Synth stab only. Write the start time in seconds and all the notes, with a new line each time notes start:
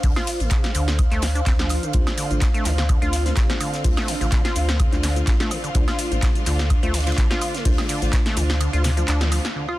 1.94 A3 D4 F4 C5
2.30 A3 D4 F4 C5
2.65 A3 D4 F4 C5
3.02 A3 D4 F4 C5
3.26 A3 D4 F4 C5
3.50 A3 D4 F4 C5
3.84 A3 D4 F4 C5
4.21 A3 D4 F4 C5
4.56 A3 D4 F4 C5
4.92 A3 D4 F4 C5
5.16 A3 D4 F4 C5
5.40 A3 D4 F4 C5
5.75 A3 D4 F4 C5
6.11 A3 D4 F4 C5
6.46 A3 D4 F4 C5
6.83 A3 D4 F4 C5
7.07 A3 D4 F4 C5
7.30 A3 D4 F4 C5
7.65 A3 D4 F4 C5
8.02 A3 D4 F4 C5
8.37 A3 D4 F4 C5
8.73 A3 D4 F4 C5
8.97 A3 D4 F4 C5
9.21 A3 D4 F4 C5